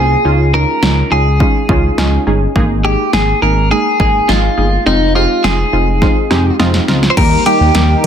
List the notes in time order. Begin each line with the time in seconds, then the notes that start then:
Already playing: C2 A#3 C4 C#4 F4 G#4
0.25 C#2 G#3 C#4 D#4 F4
0.54 G#3 C#4 D#4 F4 A#4
0.83 C#2 G#3 C#4 D#4 F4, snare
1.11 C#2 G#3 C#4 D#4 F4 G#4
1.40 G#3 C#4 D#4 F4, kick
1.69 C#2 G#3 C#4 D#4 F4, kick
1.98 C#2 G#3 C#4 D#4 F4, snare
2.27 G1 G#3 C#4 D#4 G#4
2.56 G#1 G#3 A#3 D#4 G#4, kick
2.84 G#3 A#3 D#4 G4 G#4
3.13 G#1 G#3 A#3 D#4 G#4, snare
3.42 G#1 G#3 A#3 D#4 G#4 A#4
3.71 G#3 A#3 D#4 G#4
4.00 G#1 G#3 A#3 D#4 G#4, kick
4.29 G#1 G#3 A#3 D#4 F4 G#4, snare
4.58 G1 G#3 A#3 D#4 G#4
4.86 F1 G#3 C4 D#4 F4
5.15 G#3 C4 D#4 F4 G4
5.44 F1 G#3 C4 D#4 F4 G#4, snare
5.73 F1 G#3 C4 D#4 F4
6.02 G#3 C4 D#4 F4, kick, snare
6.31 F1 G#3 C4 D#4 G4, snare
6.59 F1 G#3 C4 D#4 F4, snare
6.74 snare
6.88 C#2 G#3 C4 D#4 F4, snare
7.03 snare
7.10 C5
7.17 D#2 D#3 G3 A#3 D#4 G4 A#4, kick, closed hi-hat, crash
7.46 G3 A#3 D#4 G4, closed hi-hat
7.60 D#2
7.75 D#2 G3 A#3 D#4 G4, snare, closed hi-hat